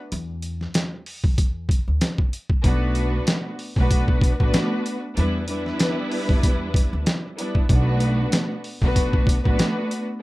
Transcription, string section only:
2.64 3.52 A3 loud
2.64 3.52 B3 medium
2.64 3.53 D4 medium
2.64 3.53 F#4 medium
2.64 3.53 B4 loud
3.78 4.35 A3 medium
3.78 4.35 B3 medium
3.78 4.35 D4 medium
3.78 4.35 F#4 medium
3.78 4.35 B4 loud
4.39 4.97 A3 loud
4.39 4.97 B3 medium
4.39 4.97 D4 medium
4.39 4.97 F#4 medium
4.39 4.97 B4 loud
5.16 5.46 G3 medium
5.16 5.46 B3 medium
5.16 5.46 D4 medium
5.16 5.46 E4 medium
5.16 5.46 B4 loud
5.48 7.24 G3 loud
5.48 7.24 B3 medium
5.48 7.24 D4 medium
5.48 7.24 E4 loud
5.48 7.25 B4 loud
7.37 7.67 G3 medium
7.37 7.67 B3 medium
7.37 7.67 D4 medium
7.37 7.67 E4 medium
7.37 7.68 B4 medium
7.70 8.58 A3 loud
7.70 8.58 B3 medium
7.70 8.58 D4 medium
7.70 8.58 F#4 loud
7.70 8.58 B4 loud
8.83 9.40 A3 medium
8.83 9.40 B3 medium
8.83 9.40 D4 medium
8.83 9.40 F#4 medium
8.83 9.40 B4 loud
9.44 10.02 A3 loud
9.44 10.02 B3 medium
9.44 10.02 D4 medium
9.44 10.02 F#4 medium
9.44 10.03 B4 loud

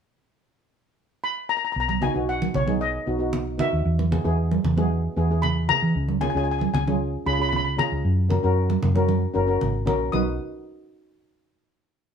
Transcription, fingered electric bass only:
1.76 2.08 B1 medium
2.16 2.47 B1 medium
2.55 2.97 B1 medium
3.07 3.60 B1 medium
3.73 3.83 D#2 medium
3.85 4.17 E2 medium
4.25 4.57 E2 medium
4.64 5.06 E2 medium
5.17 5.70 E2 medium
5.82 5.93 E3 medium
5.96 6.27 C#2 medium
6.35 6.66 C#2 medium
6.74 7.16 C#2 medium
7.26 7.79 C#2 medium
7.92 8.02 C#2 medium
8.05 8.36 F#2 medium
8.44 8.75 F#2 medium
8.83 9.25 F#2 medium
9.35 9.59 F#1 medium
9.62 9.85 G#1 medium
9.87 10.11 A#1 medium
10.13 10.38 B1 medium

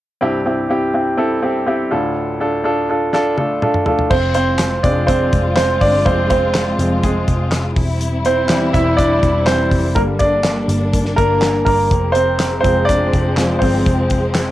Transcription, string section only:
4.12 7.73 G#3 medium
4.12 7.73 C4 medium
4.12 7.73 F4 medium
7.77 11.87 G3 medium
7.77 9.94 C4 medium
7.77 9.94 E4 medium
9.96 11.89 A#3 medium
9.96 11.89 D4 medium
11.92 14.51 F3 medium
11.92 14.51 G#3 medium
11.92 14.51 C4 medium

